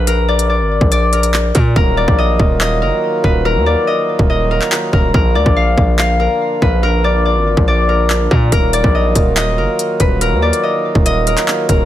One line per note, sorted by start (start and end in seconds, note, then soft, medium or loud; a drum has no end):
0.00 0.61 A#1 loud
0.00 0.13 B4 medium
0.00 0.28 D5 medium
0.00 0.89 F5 medium
0.07 1.12 A#4 loud
0.07 closed hi-hat medium
0.28 0.49 D5 medium
0.39 closed hi-hat medium
0.49 0.91 D5 medium
0.60 0.80 G#1 loud
0.81 1.52 A#1 loud
0.81 kick loud
0.92 1.97 D5 medium
0.92 closed hi-hat medium
1.13 1.55 A#4 medium
1.13 closed hi-hat medium
1.23 closed hi-hat medium
1.34 clap loud
1.55 1.75 A#2 loud
1.55 1.76 A#4 medium
1.55 kick medium
1.55 closed hi-hat medium
1.76 2.07 D#1 loud
1.76 5.11 D#3 medium
1.76 5.11 F#3 medium
1.76 5.11 A#3 medium
1.76 8.48 F4 medium
1.76 2.81 A#4 loud
1.76 kick loud
1.97 2.25 D5 medium
2.08 2.38 A#1 loud
2.08 kick loud
2.19 2.60 D#5 medium
2.39 2.83 D#1 loud
2.39 kick medium
2.61 3.72 D#5 medium
2.61 clap loud
2.82 2.92 F#1 loud
2.82 3.30 A#4 medium
3.24 3.57 D#1 loud
3.24 3.51 B4 medium
3.24 kick medium
3.45 4.51 A#4 loud
3.56 3.76 D#2 loud
3.66 3.93 D5 medium
3.87 4.29 D#5 medium
4.19 4.60 D#1 loud
4.19 kick medium
4.30 5.41 D#5 medium
4.51 4.93 A#4 medium
4.61 clap medium
4.72 clap loud
4.93 5.13 D#1 loud
4.93 5.14 A#4 medium
4.93 kick medium
5.14 5.37 A#1 loud
5.14 8.49 D3 medium
5.14 8.49 F3 medium
5.14 8.49 A#3 medium
5.14 6.19 A#4 medium
5.14 kick loud
5.35 5.45 D2 loud
5.35 7.04 D5 medium
5.46 5.76 A#1 loud
5.46 kick loud
5.56 5.98 F5 medium
5.77 6.28 A#1 loud
5.77 kick medium
5.99 7.65 F5 medium
5.99 clap loud
6.20 6.68 A#4 medium
6.62 7.37 A#1 loud
6.62 6.89 B4 medium
6.62 kick medium
6.83 7.88 A#4 loud
7.04 7.25 D5 medium
7.25 7.67 D5 medium
7.36 7.56 G#1 loud
7.57 8.28 A#1 loud
7.57 kick medium
7.68 8.73 D5 medium
7.89 8.31 A#4 medium
8.10 clap loud
8.31 8.51 A#2 loud
8.31 8.52 A#4 medium
8.31 kick medium
8.52 8.83 D#1 loud
8.52 11.85 D#3 medium
8.52 11.85 F#3 medium
8.52 11.85 A#3 medium
8.52 11.85 F4 medium
8.52 9.58 A#4 loud
8.52 kick loud
8.52 closed hi-hat medium
8.73 9.01 D5 medium
8.73 closed hi-hat medium
8.84 9.14 A#1 loud
8.84 kick loud
8.95 9.36 D#5 medium
9.15 9.59 D#1 loud
9.15 kick medium
9.15 closed hi-hat medium
9.37 10.48 D#5 medium
9.37 clap loud
9.37 closed hi-hat medium
9.58 9.68 F#1 loud
9.58 10.06 A#4 medium
9.79 closed hi-hat medium
10.00 10.33 D#1 loud
10.00 10.27 B4 medium
10.00 kick medium
10.00 closed hi-hat medium
10.21 11.27 A#4 loud
10.21 closed hi-hat medium
10.32 10.52 D#2 loud
10.42 10.69 D5 medium
10.53 closed hi-hat medium
10.63 11.05 D#5 medium
10.95 11.36 D#1 loud
10.95 kick loud
11.06 11.85 D#5 medium
11.06 closed hi-hat medium
11.27 11.69 A#4 medium
11.27 closed hi-hat medium
11.37 clap medium
11.37 closed hi-hat medium
11.48 clap loud
11.69 11.85 D#1 loud
11.69 11.85 A#4 medium
11.69 kick medium
11.69 closed hi-hat medium